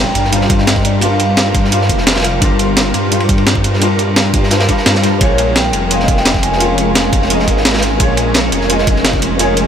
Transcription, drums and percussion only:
0.15 closed hi-hat medium
0.15 ride medium
0.24 snare soft
0.32 closed hi-hat loud
0.32 ride medium
0.41 snare soft
0.50 kick loud
0.50 closed hi-hat medium
0.50 ride medium
0.58 snare soft
0.67 snare loud
0.67 closed hi-hat loud
0.67 ride medium
0.76 kick medium
0.76 snare soft
0.85 closed hi-hat medium
0.85 ride medium
1.01 closed hi-hat medium
1.01 ride medium
1.20 closed hi-hat medium
1.20 ride medium
1.37 snare loud
1.37 closed hi-hat medium
1.37 ride medium
1.55 kick loud
1.55 closed hi-hat medium
1.55 ride medium
1.64 snare soft
1.72 closed hi-hat loud
1.72 ride medium
1.81 snare soft
1.89 kick medium
1.89 closed hi-hat medium
1.89 ride medium
1.98 snare soft
2.07 snare medium
2.07 snare loud
2.07 closed hi-hat medium
2.07 ride medium
2.11 snare loud
2.11 ride medium
2.15 snare medium
2.15 snare soft
2.15 ride medium
2.20 snare medium
2.20 ride medium
2.24 snare soft
2.24 closed hi-hat medium
2.24 ride medium
2.42 kick loud
2.42 closed hi-hat medium
2.42 ride loud
2.59 closed hi-hat medium
2.59 ride medium
2.77 snare loud
2.77 closed hi-hat medium
2.77 ride medium
2.94 closed hi-hat medium
2.94 ride medium
3.12 closed hi-hat medium
3.12 ride medium
3.20 ride medium
3.29 kick loud
3.29 closed hi-hat medium
3.38 ride medium
3.47 snare loud
3.47 closed hi-hat medium
3.47 ride medium
3.55 kick medium
3.64 closed hi-hat medium
3.64 ride medium
3.73 snare soft
3.82 closed hi-hat medium
3.82 ride medium
3.99 closed hi-hat medium
3.99 ride medium
4.16 snare loud
4.16 closed hi-hat medium
4.16 ride medium
4.34 kick loud
4.34 closed hi-hat medium
4.34 ride medium
4.43 snare soft
4.51 snare loud
4.51 closed hi-hat medium
4.51 ride medium
4.60 snare loud
4.60 ride medium
4.69 kick medium
4.69 closed hi-hat medium
4.69 ride medium
4.77 snare medium
4.86 snare loud
4.86 closed hi-hat medium
4.86 ride medium
4.95 snare soft
4.95 snare medium
5.03 snare soft
5.03 closed hi-hat medium
5.03 ride medium
5.21 kick loud
5.21 closed hi-hat medium
5.21 ride medium
5.38 closed hi-hat medium
5.38 ride medium
5.56 snare loud
5.56 closed hi-hat medium
5.56 ride medium
5.73 closed hi-hat medium
5.73 ride medium
5.91 closed hi-hat medium
5.91 ride medium
6.00 snare soft
6.08 kick loud
6.08 closed hi-hat medium
6.08 ride medium
6.17 snare soft
6.25 snare loud
6.25 closed hi-hat medium
6.25 ride medium
6.34 kick medium
6.34 snare soft
6.43 closed hi-hat medium
6.43 ride medium
6.52 snare soft
6.60 closed hi-hat medium
6.60 ride medium
6.78 closed hi-hat medium
6.78 ride medium
6.95 snare loud
6.95 closed hi-hat medium
6.95 ride medium
7.13 kick loud
7.13 closed hi-hat medium
7.13 ride medium
7.22 snare soft
7.30 closed hi-hat medium
7.30 ride medium
7.39 snare soft
7.48 kick medium
7.48 closed hi-hat medium
7.48 ride medium
7.57 snare soft
7.65 snare loud
7.65 snare medium
7.65 closed hi-hat medium
7.65 ride medium
7.69 snare medium
7.69 ride medium
7.74 snare loud
7.74 snare soft
7.74 ride medium
7.78 snare medium
7.78 ride medium
7.83 snare soft
7.83 closed hi-hat medium
7.83 ride medium
8.00 kick loud
8.00 closed hi-hat medium
8.00 ride medium
8.17 closed hi-hat medium
8.17 ride medium
8.34 snare loud
8.34 closed hi-hat loud
8.34 ride medium
8.52 closed hi-hat medium
8.52 ride medium
8.61 snare soft
8.70 closed hi-hat loud
8.70 ride medium
8.79 snare medium
8.87 kick loud
8.87 closed hi-hat medium
8.87 ride medium
8.96 snare soft
9.04 snare loud
9.04 closed hi-hat medium
9.04 ride medium
9.13 kick medium
9.13 snare soft
9.22 closed hi-hat medium
9.22 ride medium
9.39 closed hi-hat loud
9.39 ride medium
9.57 closed hi-hat medium
9.57 ride medium

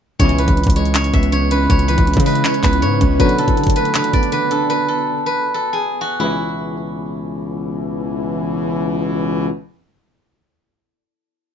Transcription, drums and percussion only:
0.20 kick loud
0.20 closed hi-hat medium
0.29 closed hi-hat medium
0.39 closed hi-hat medium
0.48 kick medium
0.48 closed hi-hat medium
0.57 closed hi-hat soft
0.64 kick loud
0.64 closed hi-hat medium
0.70 closed hi-hat medium
0.76 closed hi-hat medium
0.85 closed hi-hat medium
0.95 clap loud
0.95 closed hi-hat medium
1.04 closed hi-hat medium
1.14 kick loud
1.14 closed hi-hat medium
1.23 closed hi-hat medium
1.32 closed hi-hat medium
1.51 closed hi-hat medium
1.70 kick loud
1.70 closed hi-hat medium
1.79 closed hi-hat medium
1.89 closed hi-hat medium
1.98 kick medium
1.98 closed hi-hat medium
2.07 closed hi-hat medium
2.14 kick loud
2.14 closed hi-hat medium
2.20 closed hi-hat medium
2.26 open hi-hat medium
2.35 closed hi-hat medium
2.45 clap loud
2.45 closed hi-hat medium
2.54 closed hi-hat medium
2.64 kick loud
2.64 clap medium
2.64 closed hi-hat medium
2.73 closed hi-hat medium
2.82 closed hi-hat medium
3.01 kick loud
3.01 closed hi-hat medium
3.20 kick loud
3.20 closed hi-hat medium
3.29 closed hi-hat soft
3.39 closed hi-hat medium
3.48 kick medium
3.48 closed hi-hat medium
3.57 closed hi-hat medium
3.63 kick loud
3.63 closed hi-hat medium
3.70 closed hi-hat medium
3.76 closed hi-hat medium
3.85 closed hi-hat medium
3.95 clap loud
3.95 closed hi-hat medium
4.04 closed hi-hat medium
4.13 kick loud
4.13 closed hi-hat medium
4.23 closed hi-hat medium
4.32 closed hi-hat medium
4.51 closed hi-hat medium

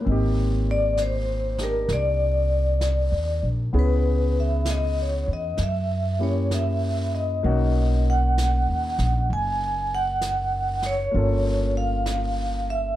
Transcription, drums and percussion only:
0.06 brush sweep soft
0.97 brush sweep soft
0.97 snare soft
0.97 hi-hat pedal soft
1.58 snare soft
1.89 brush sweep soft
1.89 snare soft
2.81 brush sweep soft
2.81 snare soft
2.81 hi-hat pedal soft
3.73 brush sweep soft
4.65 brush sweep soft
4.65 snare soft
4.65 hi-hat pedal soft
5.57 brush sweep soft
5.57 snare soft
6.51 brush sweep soft
6.51 snare soft
6.51 hi-hat pedal soft
7.44 brush sweep soft
8.38 brush sweep soft
8.38 snare soft
8.38 hi-hat pedal soft
8.98 snare soft
9.29 brush sweep soft
10.21 brush sweep soft
10.21 snare soft
10.21 hi-hat pedal soft
10.82 snare soft
11.14 brush sweep soft
12.06 brush sweep soft
12.06 snare soft
12.06 hi-hat pedal soft

